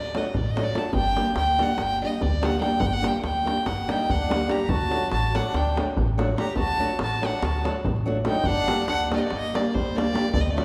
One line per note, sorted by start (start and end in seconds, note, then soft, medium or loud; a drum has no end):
0.00 0.17 D2 medium
0.00 0.19 D5 medium
0.14 0.25 F#3 medium
0.14 0.26 A3 medium
0.14 0.26 D4 medium
0.14 0.26 F#4 medium
0.14 0.38 D#5 medium
0.14 davul high medium
0.25 davul high soft
0.34 0.69 A1 loud
0.34 0.52 D5 medium
0.34 davul low medium
0.46 davul high soft
0.51 0.65 D#5 medium
0.56 0.66 F#3 medium
0.56 0.66 A3 medium
0.56 0.67 D4 medium
0.56 0.67 F#4 medium
0.56 davul high medium
0.64 0.79 D5 loud
0.74 0.85 F#3 medium
0.74 0.85 A3 medium
0.74 0.85 D4 medium
0.74 0.85 F#4 medium
0.74 0.95 A5 medium
0.74 davul high medium
0.85 davul high soft
0.93 1.19 G1 loud
0.93 1.34 G5 loud
0.93 davul low medium
1.05 davul high soft
1.16 1.27 G3 medium
1.16 1.27 A#3 soft
1.16 1.27 D4 medium
1.16 1.28 G4 medium
1.16 davul high medium
1.27 davul high soft
1.36 1.61 D2 medium
1.36 1.64 G5 loud
1.36 davul high medium
1.58 1.70 G3 medium
1.58 1.70 A#3 soft
1.58 1.70 D4 medium
1.58 1.70 G4 medium
1.58 1.83 F#5 medium
1.58 davul high medium
1.78 2.04 G1 medium
1.78 davul high medium
1.82 2.04 G5 loud
2.02 2.13 G3 medium
2.02 2.13 A#3 medium
2.02 2.13 D4 soft
2.02 2.14 G4 medium
2.02 2.23 D#5 medium
2.12 davul high soft
2.21 2.57 D2 loud
2.21 2.46 D5 medium
2.21 davul low medium
2.32 davul high soft
2.42 2.53 G3 medium
2.42 2.53 A#3 medium
2.42 2.54 D4 medium
2.42 2.54 G4 medium
2.42 2.61 F#5 loud
2.42 davul high medium
2.60 2.71 G3 medium
2.60 2.71 A#3 medium
2.60 2.72 D4 medium
2.60 2.72 G4 medium
2.60 2.81 G5 medium
2.60 davul high medium
2.71 davul high soft
2.80 3.06 G1 loud
2.80 2.88 F#5 loud
2.80 davul low loud
2.86 2.94 G5 loud
2.93 3.09 F#5 loud
2.93 davul high soft
3.02 3.14 G3 medium
3.02 3.14 A#3 medium
3.02 3.14 D4 medium
3.02 3.14 G4 medium
3.02 davul high medium
3.07 3.24 G5 medium
3.14 davul high soft
3.23 3.49 D2 medium
3.23 3.68 G5 medium
3.23 davul high medium
3.45 3.56 G3 soft
3.45 3.57 A#3 soft
3.45 3.57 D4 medium
3.45 3.57 G4 medium
3.45 davul high medium
3.57 davul high soft
3.66 3.92 G1 medium
3.66 3.93 F#5 medium
3.66 davul high medium
3.66 davul low medium
3.78 davul high soft
3.88 3.99 G3 medium
3.88 4.00 A#3 soft
3.88 4.00 D4 soft
3.88 4.09 D#4 medium
3.88 4.00 G4 medium
3.88 4.12 G5 medium
3.88 davul high medium
4.00 davul high soft
4.09 4.44 D2 loud
4.09 4.50 D4 medium
4.09 4.53 F#5 medium
4.09 davul low medium
4.21 davul high soft
4.29 4.40 G3 medium
4.29 4.40 A#3 medium
4.29 4.41 D4 medium
4.29 4.41 G4 medium
4.29 davul high medium
4.47 4.58 G3 medium
4.47 4.59 A#3 soft
4.47 4.59 D4 soft
4.47 4.60 G4 medium
4.47 davul high medium
4.51 4.69 G4 medium
4.51 4.71 A#5 medium
4.59 davul high soft
4.68 4.93 D2 medium
4.68 5.09 F#4 medium
4.68 5.11 A5 loud
4.68 davul low medium
4.80 davul high soft
4.90 5.01 F#3 medium
4.90 5.02 A3 soft
4.90 5.02 D4 soft
4.90 5.02 F#4 medium
4.90 davul high medium
5.02 davul high soft
5.11 5.37 A1 medium
5.11 5.33 F#4 medium
5.11 5.37 A5 loud
5.11 davul high medium
5.34 5.45 F#3 soft
5.34 5.45 A3 soft
5.34 5.45 D4 medium
5.34 5.54 D4 medium
5.34 5.46 F#4 medium
5.34 5.58 F#5 medium
5.34 davul high medium
5.54 5.80 D2 medium
5.54 5.79 D4 medium
5.54 5.79 G5 medium
5.54 davul high medium
5.76 5.87 F#3 medium
5.76 5.88 A3 medium
5.76 5.88 D4 soft
5.76 5.88 F#4 medium
5.76 davul high medium
5.88 davul high soft
5.97 6.33 A1 medium
5.97 davul low medium
6.08 davul high soft
6.18 6.28 F#3 medium
6.18 6.29 A3 medium
6.18 6.29 D4 medium
6.18 6.29 F#4 medium
6.18 davul high medium
6.36 6.47 F#3 soft
6.36 6.48 A3 soft
6.36 6.48 D4 soft
6.36 6.48 F#4 medium
6.36 6.55 G4 medium
6.36 6.55 A#5 medium
6.36 davul high medium
6.47 davul high soft
6.56 6.82 D2 medium
6.56 6.97 F#4 medium
6.56 6.97 A5 loud
6.56 davul low medium
6.68 davul high soft
6.79 6.90 F#3 medium
6.79 6.90 A3 medium
6.79 6.90 D4 soft
6.79 6.91 F#4 medium
6.89 davul high soft
6.99 7.25 A1 medium
6.99 davul high medium
7.03 7.23 F#4 medium
7.03 7.27 A5 medium
7.21 7.33 F#3 medium
7.21 7.33 A3 soft
7.21 7.33 D4 soft
7.21 7.33 F#4 medium
7.21 davul high medium
7.26 7.44 D4 medium
7.26 7.46 F#5 medium
7.42 7.68 D2 medium
7.42 7.67 F#4 medium
7.42 7.67 A5 medium
7.42 davul high medium
7.64 7.76 F#3 medium
7.64 7.76 A3 medium
7.64 7.76 D4 medium
7.64 7.77 F#4 medium
7.64 davul high medium
7.76 davul high soft
7.85 8.21 A1 loud
7.85 davul low medium
7.96 davul high soft
8.06 8.17 F#3 medium
8.06 8.17 A3 medium
8.06 8.17 D4 medium
8.06 8.18 F#4 medium
8.24 8.35 F#3 medium
8.24 8.36 A3 medium
8.24 8.36 D4 soft
8.24 8.44 D#4 medium
8.24 8.36 F#4 medium
8.24 8.47 G5 medium
8.24 davul high medium
8.35 davul high soft
8.44 8.71 G1 medium
8.44 8.87 D4 loud
8.44 8.87 F#5 loud
8.44 davul low medium
8.67 8.78 G3 medium
8.67 8.79 A#3 medium
8.67 8.79 D4 medium
8.67 8.79 G4 medium
8.67 davul high medium
8.79 davul high soft
8.88 9.14 D2 medium
8.88 9.10 D4 medium
8.88 9.10 F#5 loud
8.88 davul high medium
9.10 9.22 G3 medium
9.10 9.22 A#3 soft
9.10 9.14 A#3 medium
9.10 9.22 D4 soft
9.10 9.23 G4 medium
9.10 9.17 D5 medium
9.10 davul high medium
9.16 9.21 C4 medium
9.16 9.22 D#5 medium
9.21 9.30 A#3 medium
9.21 9.31 D5 medium
9.30 9.57 G1 medium
9.30 9.53 A#3 medium
9.30 9.57 D#5 loud
9.30 davul high medium
9.53 9.65 G3 medium
9.53 9.65 A#3 medium
9.53 9.75 A#3 medium
9.53 9.65 D4 medium
9.53 9.65 G4 medium
9.53 9.75 D5 medium
9.53 davul high medium
9.65 davul high soft
9.74 10.10 D2 medium
9.74 9.97 G3 medium
9.74 9.98 C5 medium
9.74 davul low medium
9.87 davul high soft
9.95 10.06 G3 medium
9.95 10.06 A#3 medium
9.95 10.34 A#3 medium
9.95 10.06 D4 medium
9.95 10.07 G4 medium
9.95 10.33 D5 loud
9.95 davul high medium
10.13 10.24 G3 medium
10.13 10.24 A#3 medium
10.13 10.25 D4 medium
10.13 10.25 G4 medium
10.13 davul high medium
10.24 davul high soft
10.33 10.59 D2 loud
10.33 10.42 A3 medium
10.33 10.42 D5 loud
10.33 davul low loud
10.41 10.50 C4 medium
10.41 10.52 D#5 medium
10.46 davul high soft
10.50 10.65 A3 medium
10.50 10.65 D5 medium
10.56 10.65 F#3 soft
10.56 10.65 A3 medium
10.56 10.65 D4 soft
10.56 10.65 F#4 medium
10.56 davul high medium